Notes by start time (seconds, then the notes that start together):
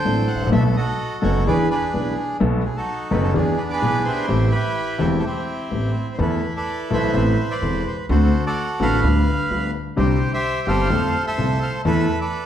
Already playing: A4 C5 G5
0.05 A1 A2 F#3 C4 D4 A4
0.27 F#5
0.35 G#1
0.41 A1
0.47 A#1
0.52 B1 B2 F#3 B3 D#4 A4 E5
0.76 F#4 A4 D#5
1.22 F#1 F#2 F#3 B3 D#4 A4 C#5
1.47 E2 E3 B3 D4 G#4 B4 D5
1.70 D4 G#4 B4
1.93 B1 B2 E3 B3 D4 G#4
2.40 B1 B2 F#3 B3 D#4 A4
2.65 G#4
2.77 D#4 F#4 A4
3.11 F#1 F#2 F#3 B3 D#4 A4 B4
3.23 A4
3.33 E2 E3 B3 D4 G#4
3.57 B4
3.70 G#4 B4 D5
3.82 B1 B2 E3 B3 D4 G#4
4.05 E4 G4 C5
4.28 A1 A2 E3 A3 C4 G4
4.52 E4 G4 B4
4.99 E1 E2 E3 A3 C4 G4 A4
5.19 A4
5.24 C4 E4 G4
5.71 A1 A2 E3 A3 C4 G4
6.14 C5
6.18 E2 E3 A3 B3 E4 A4 B4
6.56 A4 B4 D5
6.90 B1 B2 E3 A3 B3 A4 B4 C5 E5
7.13 A1 A2 E3 B3 C4 A4
7.51 B4 D5
7.61 E1 E2 E3 B3 C4 A4
7.87 C5
8.09 D2 D3 A3 C4 F#4 A4 C5
8.46 F#4 A4 D5
8.80 A1 A2 D3 A3 C4 F#4 B4 F5
9.03 D2 D3 G3 B3 F4
9.50 D2 D3 G3 B3 F4
9.96 C2 C3 D3 G3 C4 G4 C5
10.34 G4 C5 E5
10.67 G1 G2 D3 G3 C4 G4 A4 C5 F5
10.90 F2 F3 A3 C4 A4
11.27 A4 C5 E5
11.38 C2 C3 F3 A3 C4 A4
11.62 F5
11.85 E2 E3 A3 B3 A4 B4 E5
12.21 A4 B4 D5